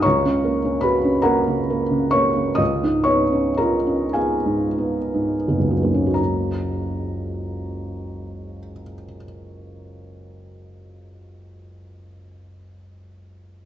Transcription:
0.02 2.56 C#2 soft
0.02 0.79 C#5 medium
0.02 0.79 A#5 medium
0.02 0.83 C#6 medium
0.25 0.56 C#3 soft
0.44 0.76 A#3 soft
0.65 0.97 C#4 soft
0.81 1.17 F#4 soft
0.81 1.22 B4 medium
0.81 1.24 B5 medium
1.04 1.38 C#4 soft
1.22 1.60 A#3 soft
1.22 2.08 A#4 medium
1.22 2.08 F#5 medium
1.22 2.11 A#5 medium
1.48 1.82 C#3 soft
1.70 2.05 A#3 soft
1.91 2.27 C#3 soft
2.11 2.50 A#3 soft
2.11 2.55 C#5 medium
2.11 2.58 C#6 medium
2.36 2.59 C#3 soft
2.55 5.58 C#2 medium
2.55 3.03 D#5 medium
2.55 3.06 D#6 medium
2.83 3.23 G#2 soft
3.04 3.49 B3 soft
3.04 3.54 C#5 medium
3.04 3.58 C#6 medium
3.33 3.76 C#4 soft
3.58 4.05 F4 soft
3.58 4.12 A#4 medium
3.58 4.15 A#5 medium
3.87 4.34 C#4 soft
4.13 4.65 B3 soft
4.13 6.12 G#4 soft
4.13 6.12 F5 soft
4.13 6.16 G#5 medium
4.46 4.98 G#2 soft
4.78 5.34 B3 soft
5.14 5.72 G#2 soft
5.48 8.59 F#1 soft
5.48 6.05 B3 soft
5.59 8.70 C#2 soft
5.71 8.81 F#3 soft
5.83 6.18 G#2 soft
5.83 8.93 A#3 soft
5.94 9.05 C#4 soft
6.06 9.17 F#4 soft
6.14 9.24 A#5 soft

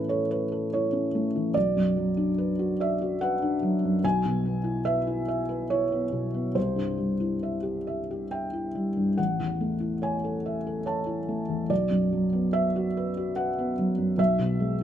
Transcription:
0.00 1.52 A2 medium
0.00 1.36 E3 soft
0.00 1.15 A3 soft
0.00 0.93 C#4 soft
0.00 0.21 E4 soft
0.00 0.10 A4 medium
0.00 0.31 B4 medium
0.09 0.43 A4 soft
0.09 0.28 C#5 medium
0.31 0.69 B4 medium
0.31 0.64 C#5 soft
0.52 0.85 A4 soft
0.73 1.06 E4 soft
0.73 1.52 C#5 medium
0.93 1.26 C#4 soft
1.15 1.47 A3 soft
1.36 1.56 E3 soft
1.54 4.00 B1 medium
1.54 2.76 D5 medium
1.76 2.09 F#2 soft
1.97 2.30 F#3 soft
2.17 2.51 D4 soft
2.38 2.72 B4 soft
2.59 2.93 F#4 soft
2.80 3.13 D5 soft
2.80 3.19 E5 medium
3.01 3.34 F#4 soft
3.21 3.55 B4 medium
3.21 3.99 F#5 medium
3.42 3.75 D4 soft
3.63 3.95 F#3 soft
3.84 4.04 F#2 soft
4.04 6.52 B1 medium
4.04 4.83 G#5 medium
4.25 4.58 B2 soft
4.45 4.78 B3 soft
4.64 4.98 E4 soft
4.85 5.19 B4 soft
4.85 5.27 E5 medium
5.07 5.41 E4 soft
5.28 5.62 E5 medium
5.49 5.83 B4 soft
5.70 6.04 E4 soft
5.70 6.52 C#5 medium
5.92 6.26 B3 soft
6.12 6.47 B2 soft
6.34 6.56 B3 soft
6.55 9.13 C2 soft
6.55 8.27 C5 medium
6.76 7.11 G2 soft
6.98 7.33 G3 soft
7.20 7.55 E4 soft
7.43 7.78 E5 soft
7.63 7.99 G4 soft
7.87 8.22 E5 soft
8.11 8.45 G4 soft
8.31 8.66 E5 soft
8.31 9.14 G5 medium
8.53 8.88 E4 soft
8.75 9.09 G3 soft
8.97 9.18 G2 soft
9.18 11.67 A1 soft
9.18 9.99 F#5 medium
9.40 9.73 E2 soft
9.61 9.94 A3 soft
9.80 10.15 E4 soft
10.02 10.36 C#5 soft
10.02 10.83 G#5 medium
10.24 10.58 A4 soft
10.46 10.79 E5 soft
10.67 11.00 A4 soft
10.86 11.20 C#5 soft
10.86 11.66 A5 medium
11.06 11.40 E4 soft
11.28 11.62 A3 soft
11.49 11.70 E2 soft
11.70 14.15 B1 soft
11.70 12.50 D5 medium
11.91 12.24 F#2 soft
12.13 12.46 F#3 soft
12.33 12.66 B3 soft
12.53 12.87 B4 soft
12.53 13.32 E5 medium
12.76 13.08 F#4 soft
12.97 13.29 B4 medium
13.17 13.49 F#4 soft
13.36 13.70 B4 soft
13.36 13.74 F#5 medium
13.59 13.91 B3 soft
13.79 14.11 F#3 soft
13.98 14.19 F#2 soft
14.18 14.83 B1 medium
14.18 14.83 E5 medium
14.39 14.73 B2 soft
14.60 14.83 G#3 soft

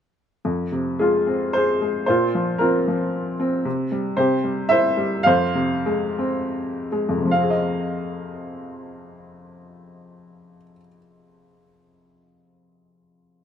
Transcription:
0.45 2.04 F2 soft
0.72 1.78 C3 soft
0.99 1.80 G#3 soft
0.99 1.51 F4 soft
0.99 1.55 G#4 soft
1.27 2.05 C4 soft
1.53 2.05 G#4 soft
1.53 2.05 C5 medium
1.81 2.07 G#3 soft
2.06 3.61 A#2 soft
2.06 2.58 F4 soft
2.06 2.61 C5 medium
2.35 2.86 F3 soft
2.58 3.38 C4 soft
2.58 3.36 F4 soft
2.58 3.34 A#4 medium
2.88 3.64 F3 soft
3.40 3.65 C4 soft
3.65 4.16 C3 soft
3.92 4.17 G3 soft
4.17 5.23 C3 medium
4.17 4.68 G4 soft
4.17 4.70 C5 medium
4.44 4.96 G3 soft
4.69 5.25 E4 soft
4.69 5.23 C5 medium
4.69 5.27 E5 medium
4.97 5.25 G3 soft
5.23 7.07 F2 soft
5.23 6.88 C5 medium
5.23 6.86 F5 medium
5.55 6.87 C3 soft
5.86 6.90 G#3 soft
6.19 7.26 C4 soft
6.92 7.29 G#3 soft
7.09 10.55 F2 soft
7.17 10.63 C3 soft
7.25 10.71 F3 soft
7.31 10.79 C4 soft
7.31 10.77 F5 soft
7.42 10.88 G#4 soft
7.50 10.96 D#5 soft

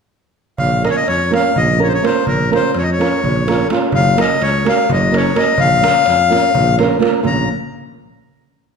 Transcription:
0.58 0.89 A#1 medium
0.58 0.83 F5 medium
0.58 darbuka dum medium
0.71 darbuka tek soft
0.83 1.03 A#3 medium
0.83 1.03 C#4 soft
0.83 1.04 F4 soft
0.83 1.04 A#4 medium
0.83 0.88 D#5 medium
0.83 darbuka tek medium
0.90 0.96 C#5 medium
0.96 1.07 D#5 medium
1.08 1.37 F2 medium
1.08 1.32 C#5 medium
1.08 darbuka tek medium
1.20 darbuka tek soft
1.31 1.51 A#3 medium
1.31 1.51 C#4 medium
1.31 1.52 F4 medium
1.31 1.52 A#4 medium
1.31 1.58 F5 loud
1.31 darbuka tek medium
1.44 darbuka tek soft
1.56 1.99 A#1 loud
1.56 1.80 D#5 medium
1.56 darbuka dum medium
1.78 1.98 A#3 medium
1.78 1.99 C#4 medium
1.78 1.99 F4 medium
1.78 1.99 A#4 medium
1.83 1.88 C#5 medium
1.88 1.93 C5 medium
1.93 2.05 C#5 medium
1.93 darbuka tek soft
2.02 2.22 A#3 medium
2.02 2.22 C#4 soft
2.02 2.23 F4 soft
2.02 2.23 A#4 medium
2.02 2.26 C5 medium
2.02 darbuka tek medium
2.27 2.56 A#1 medium
2.27 2.50 A#4 medium
2.27 darbuka dum medium
2.41 darbuka tek soft
2.51 2.71 A#3 medium
2.51 2.71 C#4 soft
2.51 2.71 F4 medium
2.51 2.71 A#4 medium
2.51 2.77 C5 medium
2.51 darbuka tek medium
2.75 3.04 F2 medium
2.75 2.84 C#5 medium
2.75 darbuka tek medium
2.83 2.90 D#5 medium
2.88 darbuka tek soft
2.92 3.68 C#5 medium
2.98 3.18 A#3 medium
2.98 3.19 C#4 medium
2.98 3.19 F4 medium
2.98 3.20 A#4 medium
2.98 darbuka tek medium
3.23 3.65 A#1 medium
3.23 darbuka dum medium
3.47 3.66 A#3 medium
3.47 3.67 C#4 medium
3.47 3.67 F4 medium
3.47 3.67 A#4 medium
3.47 darbuka tek medium
3.60 darbuka tek soft
3.70 3.89 A#3 medium
3.70 3.89 C#4 medium
3.70 3.90 F4 medium
3.70 3.90 A#4 medium
3.70 darbuka tek medium
3.92 4.22 F#1 medium
3.92 4.20 F5 loud
3.92 darbuka dum medium
4.07 darbuka tek soft
4.16 4.36 A#3 medium
4.16 4.37 C#4 soft
4.16 4.37 F#4 soft
4.16 4.37 A#4 medium
4.16 4.43 D#5 medium
4.16 darbuka tek medium
4.41 4.70 C#2 medium
4.41 4.68 C#5 loud
4.41 darbuka tek medium
4.54 darbuka tek soft
4.65 4.85 A#3 medium
4.65 4.85 C#4 medium
4.65 4.85 F#4 medium
4.65 4.85 A#4 medium
4.65 darbuka tek medium
4.69 4.91 F5 medium
4.89 5.31 F#1 medium
4.89 5.16 D#5 medium
4.89 darbuka dum medium
5.11 5.31 A#3 medium
5.11 5.31 C#4 medium
5.11 5.32 F#4 medium
5.11 5.32 A#4 medium
5.11 darbuka tek medium
5.17 5.38 C#5 medium
5.26 darbuka tek soft
5.35 5.54 A#3 medium
5.35 5.55 C#4 soft
5.35 5.55 F#4 soft
5.35 5.55 A#4 medium
5.35 5.60 D#5 medium
5.35 darbuka tek medium
5.58 5.88 A#1 medium
5.58 6.76 F5 loud
5.58 darbuka dum medium
5.82 6.02 A#3 medium
5.82 6.02 C#4 soft
5.82 6.03 F4 medium
5.82 6.03 A#4 medium
5.82 darbuka tek medium
6.06 6.36 F2 medium
6.06 darbuka tek medium
6.19 darbuka tek soft
6.30 6.50 A#3 medium
6.30 6.50 C#4 medium
6.30 6.51 F4 medium
6.30 6.51 A#4 medium
6.30 darbuka tek medium
6.43 darbuka tek soft
6.55 6.97 A#1 loud
6.55 darbuka dum medium
6.78 6.98 A#3 medium
6.78 6.98 C#4 medium
6.78 6.98 F4 medium
6.78 6.98 A#4 medium
6.78 darbuka tek medium
6.91 darbuka tek soft
6.99 7.19 A#3 medium
6.99 7.20 C#4 medium
6.99 7.20 F4 medium
6.99 7.20 A#4 medium
6.99 darbuka tek medium
7.14 darbuka tek soft
7.23 7.48 A#1 medium
7.23 7.47 A#3 medium
7.23 7.48 C#4 medium
7.23 7.47 F4 medium
7.23 7.47 A#4 medium
7.23 7.49 A#5 medium
7.23 darbuka dum medium

